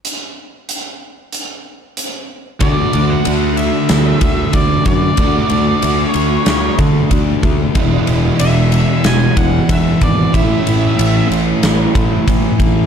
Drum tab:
RD |--------|xxxxxxxx|xxxxxxxx|xxxxxxxx|
HH |x-x-x-x-|--------|--------|--------|
SD |--------|----o---|----o---|----o---|
BD |--------|o----ooo|o----ooo|o----ooo|

RD |xxxxxxxx|
HH |--------|
SD |----o---|
BD |o----ooo|